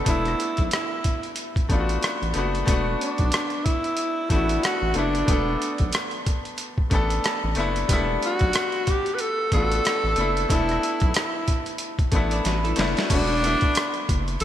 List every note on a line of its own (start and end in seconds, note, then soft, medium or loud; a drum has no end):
0.00 2.68 G#3 soft
0.00 0.05 A3 medium
0.00 0.06 B3 medium
0.00 0.07 D4 medium
0.00 0.10 E4 medium
0.00 2.68 A4 medium
0.05 0.35 E1 loud
0.05 1.04 A3 medium
0.05 1.05 B3 medium
0.05 1.05 D4 medium
0.05 0.68 E4 medium
0.05 kick medium
0.05 closed hi-hat medium
0.10 1.06 E4 medium
0.25 cross-stick soft
0.25 closed hi-hat soft
0.40 closed hi-hat medium
0.57 0.70 B1 medium
0.57 kick medium
0.57 closed hi-hat soft
0.71 1.34 E4 medium
0.71 cross-stick medium
0.71 closed hi-hat medium
1.04 kick medium
1.04 closed hi-hat medium
1.23 closed hi-hat soft
1.36 closed hi-hat medium
1.56 kick medium
1.56 closed hi-hat soft
1.69 1.98 A1 medium
1.69 2.21 A3 medium
1.69 2.22 B3 medium
1.69 2.23 D4 medium
1.69 kick medium
1.69 closed hi-hat soft
1.73 1.79 F4 medium
1.80 2.27 F#4 medium
1.89 closed hi-hat soft
2.03 cross-stick medium
2.03 closed hi-hat medium
2.22 2.33 A1 medium
2.22 closed hi-hat soft
2.33 2.63 F#1 medium
2.33 2.60 A3 medium
2.33 2.61 B3 medium
2.33 2.62 D4 medium
2.33 cross-stick soft
2.33 closed hi-hat medium
2.38 2.63 F#4 medium
2.55 closed hi-hat soft
2.65 2.96 E1 medium
2.65 3.65 A3 medium
2.65 3.66 B3 medium
2.65 3.66 D4 medium
2.65 kick loud
2.65 closed hi-hat medium
2.71 3.67 F#4 medium
3.01 3.67 D4 medium
3.01 closed hi-hat medium
3.18 3.31 B1 medium
3.18 kick medium
3.18 closed hi-hat soft
3.32 cross-stick loud
3.32 closed hi-hat medium
3.50 closed hi-hat soft
3.65 4.30 E4 medium
3.65 kick medium
3.65 closed hi-hat medium
3.84 closed hi-hat soft
3.97 closed hi-hat medium
4.29 4.59 A1 medium
4.29 4.82 A3 medium
4.29 4.83 B3 medium
4.29 4.84 D4 medium
4.29 4.65 E4 medium
4.29 kick medium
4.29 closed hi-hat medium
4.34 4.84 F#4 medium
4.49 closed hi-hat soft
4.63 4.98 F#4 medium
4.63 cross-stick medium
4.63 closed hi-hat medium
4.82 4.94 A1 medium
4.94 5.24 F#1 medium
4.94 5.21 A3 medium
4.94 5.21 B3 medium
4.94 5.94 D4 medium
4.94 5.22 D4 medium
4.94 closed hi-hat medium
4.98 5.23 E4 medium
5.15 closed hi-hat soft
5.26 5.57 E1 medium
5.26 6.25 A3 medium
5.26 6.26 B3 medium
5.26 6.27 D4 medium
5.26 kick loud
5.26 closed hi-hat medium
5.31 6.28 A4 medium
5.62 closed hi-hat medium
5.78 5.92 B1 medium
5.78 kick medium
5.78 closed hi-hat soft
5.93 cross-stick loud
5.93 closed hi-hat medium
6.11 closed hi-hat soft
6.26 kick medium
6.26 closed hi-hat medium
6.45 closed hi-hat soft
6.58 closed hi-hat medium
6.78 kick medium
6.90 7.20 A1 medium
6.90 7.43 A3 medium
6.90 7.44 B3 medium
6.90 7.44 D4 medium
6.90 kick medium
6.90 closed hi-hat medium
6.95 7.45 A4 medium
7.10 closed hi-hat soft
7.24 7.54 A5 medium
7.24 cross-stick medium
7.24 closed hi-hat medium
7.44 7.55 A1 medium
7.55 7.85 F#1 medium
7.55 7.82 A3 medium
7.55 7.83 B3 medium
7.55 7.83 D4 medium
7.55 7.87 E5 medium
7.55 closed hi-hat medium
7.60 7.84 E4 medium
7.76 closed hi-hat soft
7.88 8.18 E1 medium
7.88 7.96 G3 medium
7.88 8.88 B3 medium
7.88 8.88 D4 medium
7.88 kick loud
7.88 closed hi-hat medium
7.93 8.90 A3 medium
7.93 8.89 E4 medium
8.23 8.91 F#4 loud
8.23 closed hi-hat medium
8.39 8.53 B1 medium
8.39 kick medium
8.39 closed hi-hat soft
8.53 cross-stick loud
8.53 closed hi-hat medium
8.72 closed hi-hat soft
8.87 9.16 G4 medium
8.87 kick medium
8.87 closed hi-hat medium
9.06 closed hi-hat soft
9.15 9.22 B4 medium
9.15 closed hi-hat medium
9.21 9.52 A4 medium
9.51 9.81 A1 medium
9.51 10.04 A3 medium
9.51 10.04 B3 medium
9.51 10.05 D4 medium
9.51 10.46 A4 loud
9.51 kick medium
9.51 closed hi-hat medium
9.55 9.61 F4 medium
9.62 10.09 F#4 medium
9.72 closed hi-hat medium
9.85 cross-stick medium
9.85 closed hi-hat medium
10.04 10.15 A1 medium
10.16 10.46 F#1 medium
10.16 10.42 A3 medium
10.16 10.43 B3 medium
10.16 10.44 D4 medium
10.16 closed hi-hat medium
10.21 10.45 E4 medium
10.37 closed hi-hat soft
10.49 10.78 E1 medium
10.49 11.47 A3 medium
10.49 11.48 B3 medium
10.49 11.49 D4 medium
10.49 11.12 E4 medium
10.49 kick medium
10.49 closed hi-hat medium
10.53 11.50 A4 medium
10.69 cross-stick soft
10.69 closed hi-hat soft
10.83 closed hi-hat medium
11.00 11.13 B1 medium
11.00 kick medium
11.00 closed hi-hat soft
11.14 11.77 E4 medium
11.14 cross-stick loud
11.14 closed hi-hat medium
11.48 kick medium
11.48 closed hi-hat medium
11.66 closed hi-hat soft
11.78 closed hi-hat medium
11.99 kick medium
11.99 closed hi-hat soft
12.12 12.41 A1 medium
12.12 12.64 A3 medium
12.12 12.65 B3 medium
12.12 12.66 D4 medium
12.12 kick medium
12.12 closed hi-hat medium
12.16 12.67 E4 medium
12.31 12.45 A4 medium
12.31 12.45 D5 medium
12.31 closed hi-hat soft
12.45 12.74 A1 medium
12.45 12.64 F#4 medium
12.45 12.64 B4 medium
12.45 snare soft
12.45 closed hi-hat medium
12.64 12.96 E4 medium
12.64 12.95 A4 medium
12.64 closed hi-hat soft
12.76 12.95 F#1 medium
12.76 13.03 A3 medium
12.76 13.04 B3 medium
12.76 13.05 D4 medium
12.76 snare medium
12.76 closed hi-hat medium
12.81 13.05 E4 medium
12.97 13.28 C#4 medium
12.97 13.28 F#4 medium
12.97 snare medium
12.97 closed hi-hat soft
13.09 13.56 E1 loud
13.09 13.36 A3 medium
13.09 13.37 B3 medium
13.09 14.04 D4 loud
13.09 13.38 D4 medium
13.09 kick loud
13.09 closed hi-hat medium
13.09 crash medium
13.14 13.39 F#4 medium
13.41 14.41 A3 medium
13.41 14.41 B3 medium
13.41 14.42 D4 medium
13.41 closed hi-hat medium
13.46 14.43 E4 medium
13.61 kick medium
13.61 closed hi-hat soft
13.75 cross-stick loud
13.75 closed hi-hat medium
13.94 closed hi-hat soft
14.09 14.37 F#1 medium
14.09 kick medium
14.09 closed hi-hat medium
14.28 closed hi-hat soft
14.40 14.44 A1 loud
14.40 closed hi-hat medium